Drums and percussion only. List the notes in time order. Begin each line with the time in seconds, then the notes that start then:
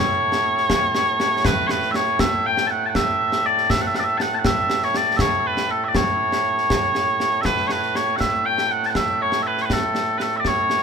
0.32 snare
0.57 snare
0.70 concert bass drum, snare
0.95 snare
1.20 snare
1.45 concert bass drum, snare
1.69 snare
1.83 snare
1.94 snare
2.19 concert bass drum, snare
2.57 snare
2.95 concert bass drum, snare
3.32 snare
3.58 snare
3.70 concert bass drum, snare
3.95 snare
4.20 snare
4.45 concert bass drum, snare
4.70 snare
4.82 snare
4.94 snare
5.19 concert bass drum, snare
5.57 snare
5.95 concert bass drum, snare
6.32 snare
6.58 snare
6.70 concert bass drum, snare
6.95 snare
7.20 snare
7.45 concert bass drum, snare
7.57 snare
7.70 snare
7.82 snare
7.95 snare
8.21 concert bass drum, snare
8.58 snare
8.83 snare
8.95 concert bass drum, snare
9.32 snare
9.57 snare
9.70 concert bass drum, snare
9.95 snare
10.20 snare
10.45 concert bass drum, snare
10.70 snare